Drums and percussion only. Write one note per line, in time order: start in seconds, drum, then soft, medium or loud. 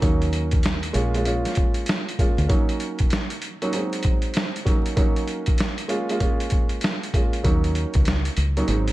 0.02 kick loud
0.02 closed hi-hat loud
0.22 closed hi-hat soft
0.33 closed hi-hat medium
0.51 kick medium
0.51 closed hi-hat medium
0.63 snare loud
0.63 snare medium
0.63 closed hi-hat medium
0.83 closed hi-hat medium
0.94 closed hi-hat medium
1.15 closed hi-hat soft
1.25 closed hi-hat medium
1.45 snare soft
1.45 closed hi-hat medium
1.55 kick medium
1.55 closed hi-hat medium
1.74 closed hi-hat medium
1.86 snare loud
1.86 snare medium
1.86 closed hi-hat medium
2.09 closed hi-hat medium
2.19 kick loud
2.19 closed hi-hat medium
2.38 closed hi-hat medium
2.50 kick loud
2.50 closed hi-hat loud
2.69 closed hi-hat soft
2.80 closed hi-hat medium
2.99 kick medium
2.99 closed hi-hat medium
3.10 snare loud
3.10 snare medium
3.10 closed hi-hat medium
3.30 closed hi-hat medium
3.42 closed hi-hat medium
3.62 closed hi-hat soft
3.73 closed hi-hat medium
3.93 closed hi-hat medium
4.03 kick medium
4.03 closed hi-hat medium
4.22 closed hi-hat medium
4.34 snare loud
4.34 snare medium
4.34 closed hi-hat medium
4.56 closed hi-hat medium
4.66 kick loud
4.66 closed hi-hat medium
4.86 closed hi-hat medium
4.97 kick loud
4.97 closed hi-hat loud
5.16 closed hi-hat soft
5.28 closed hi-hat medium
5.46 kick medium
5.46 closed hi-hat medium
5.58 snare loud
5.58 snare medium
5.58 closed hi-hat loud
5.78 closed hi-hat medium
5.89 closed hi-hat medium
6.09 closed hi-hat soft
6.20 kick medium
6.20 closed hi-hat medium
6.40 closed hi-hat medium
6.50 kick medium
6.50 closed hi-hat medium
6.69 closed hi-hat medium
6.81 snare loud
6.81 snare medium
6.81 closed hi-hat medium
7.03 closed hi-hat medium
7.14 kick loud
7.14 closed hi-hat medium
7.33 closed hi-hat medium
7.44 kick loud
7.44 closed hi-hat loud
7.64 closed hi-hat soft
7.75 closed hi-hat medium
7.94 kick medium
7.94 closed hi-hat medium
8.05 snare loud
8.05 snare medium
8.05 closed hi-hat loud
8.25 closed hi-hat medium
8.37 closed hi-hat medium
8.57 closed hi-hat soft
8.68 closed hi-hat medium
8.88 closed hi-hat medium